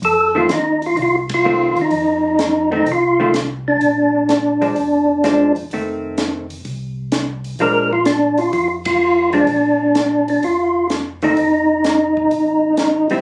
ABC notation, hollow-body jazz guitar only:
X:1
M:4/4
L:1/8
Q:"Swing" 1/4=127
K:Fmix
V:1 name="Hollow-body jazz guitar"
z [E,A,C] z4 [E,A,C] z | z3 [E,A,C] z [E,A,C] z2 | z3 [F,_A,D] z2 [F,A,D] z | [E,A,C]3 z4 z |
[F,_A,D] z6 [F,A,D] | z6 z [E,A,C] | z6 z [G,C=E] |]